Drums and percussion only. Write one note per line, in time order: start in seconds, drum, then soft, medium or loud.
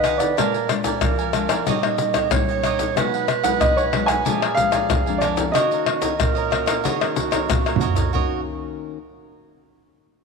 0.04 pandeiro medium
0.04 tamborim medium
0.04 shaker medium
0.20 pandeiro medium
0.20 shaker medium
0.20 surdo soft
0.38 pandeiro medium
0.38 tamborim medium
0.38 shaker medium
0.38 surdo medium
0.54 pandeiro soft
0.54 shaker soft
0.69 pandeiro medium
0.69 tamborim medium
0.69 shaker medium
0.84 pandeiro medium
0.84 shaker medium
0.84 surdo soft
1.01 pandeiro medium
1.01 tamborim medium
1.01 shaker medium
1.01 surdo medium
1.19 pandeiro soft
1.19 shaker soft
1.33 pandeiro medium
1.33 tamborim medium
1.33 shaker medium
1.49 pandeiro medium
1.49 tamborim medium
1.49 shaker medium
1.49 surdo soft
1.67 pandeiro medium
1.67 shaker medium
1.67 surdo medium
1.83 pandeiro soft
1.83 tamborim medium
1.83 shaker soft
1.98 pandeiro medium
1.98 shaker medium
2.14 pandeiro medium
2.14 tamborim medium
2.14 shaker medium
2.14 surdo soft
2.31 pandeiro medium
2.31 tamborim medium
2.31 shaker medium
2.31 surdo loud
2.49 pandeiro soft
2.49 shaker soft
2.64 pandeiro medium
2.64 tamborim medium
2.64 shaker medium
2.79 pandeiro medium
2.79 shaker medium
2.79 surdo soft
2.97 pandeiro medium
2.97 tamborim medium
2.97 shaker medium
2.97 surdo medium
3.14 pandeiro soft
3.14 shaker soft
3.28 pandeiro medium
3.28 tamborim medium
3.28 shaker medium
3.44 pandeiro medium
3.44 shaker medium
3.44 surdo soft
3.61 pandeiro medium
3.61 tamborim medium
3.61 shaker medium
3.61 surdo loud
3.78 pandeiro soft
3.78 shaker soft
3.93 pandeiro medium
3.93 tamborim medium
4.08 pandeiro medium
4.08 tamborim medium
4.08 shaker medium
4.08 surdo soft
4.26 pandeiro medium
4.26 shaker medium
4.26 surdo medium
4.42 pandeiro soft
4.42 tamborim medium
4.42 shaker soft
4.57 pandeiro medium
4.57 shaker medium
4.57 surdo soft
4.72 pandeiro medium
4.72 tamborim medium
4.72 shaker medium
4.72 surdo soft
4.90 pandeiro medium
4.90 tamborim medium
4.90 shaker medium
4.90 surdo loud
5.07 pandeiro soft
5.07 shaker soft
5.22 pandeiro medium
5.22 tamborim medium
5.22 shaker medium
5.37 pandeiro medium
5.37 shaker medium
5.37 surdo soft
5.55 pandeiro medium
5.55 tamborim medium
5.55 shaker medium
5.55 surdo soft
5.72 pandeiro soft
5.72 shaker soft
5.86 pandeiro medium
5.86 tamborim medium
6.02 pandeiro medium
6.02 shaker medium
6.02 surdo soft
6.20 pandeiro medium
6.20 tamborim medium
6.20 shaker medium
6.20 surdo medium
6.37 pandeiro soft
6.37 shaker soft
6.52 pandeiro medium
6.52 tamborim medium
6.67 pandeiro medium
6.67 tamborim medium
6.67 shaker medium
6.67 surdo soft
6.85 pandeiro medium
6.85 shaker medium
6.85 surdo medium
7.01 pandeiro soft
7.01 tamborim medium
7.01 shaker soft
7.16 pandeiro medium
7.16 shaker medium
7.16 surdo soft
7.32 pandeiro medium
7.32 tamborim medium
7.32 shaker medium
7.32 surdo soft
7.50 pandeiro medium
7.50 tamborim medium
7.50 shaker medium
7.50 surdo loud
7.66 pandeiro soft
7.66 tamborim medium
7.66 shaker soft
7.76 surdo medium
7.81 pandeiro medium
7.81 shaker medium
7.87 surdo medium
7.96 pandeiro medium
7.96 shaker medium
7.96 surdo medium
8.14 surdo medium